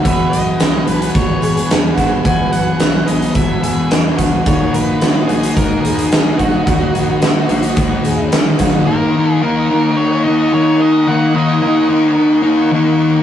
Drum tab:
HH |x-x-x-xxx-xxx-x-|x-x-x-xxx-x-x-x-|x-x-x-xxx-xxx-x-|x-x-x-xxx-x-x-x-|
SD |----o-------o-o-|----o-------o-o-|----o-------o---|----o-------o-o-|
BD |o-------o-----o-|o-------o-----o-|o-------o-----o-|o-------o-----o-|

HH |----------------|----------------|
SD |----------------|----------------|
BD |----------------|----------------|